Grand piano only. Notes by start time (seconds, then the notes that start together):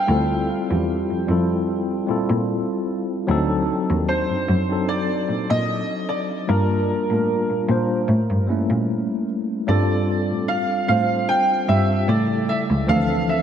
Already playing: G5
4.08 C5
4.89 D5
5.50 D#5
6.09 D5
6.49 A#4
9.68 D5
10.48 F5
10.88 F5
11.29 G5
11.69 E5
12.09 D5
12.49 E5
12.89 F5
13.29 E5